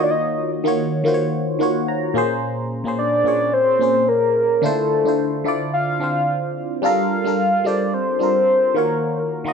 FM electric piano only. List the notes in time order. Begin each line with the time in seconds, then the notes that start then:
Already playing: D#3 A#3 F4 F#4 C#5
0.64 D#3 A#3 F4 F#4
0.68 C#5
1.04 D#3 A#3 F4 F#4
1.08 C5
1.14 C#5
1.59 D#3 A#3 F4 F#4 F#5
1.63 C#5
1.88 A#5
2.14 A#2 A#3 C#4 G#4 C5
2.84 A#2 A#3 C#4 G#4
2.88 C5
3.24 A#2 A#3 C#4 G#4 C#5
3.79 A#2 A#3 C#4 G#4 C5
4.62 D3 D4 E4 F4 C5
5.05 D3 D4 E4 F4 C5
5.44 D3 D4 E4 F4 D5
5.99 D3 C4 D4 F4
6.04 C5
6.82 G3 D4 F4 A4 A#4
7.24 G3 D4 F4 A4
7.28 A#4
7.64 G3 D4 F4 A4
7.68 C5
8.19 G3 D4 F4 A4
8.23 A#4
8.74 D#3 A#3 F4 F#4 C#5
9.44 D#3 A#3 F4 F#4
9.48 D#5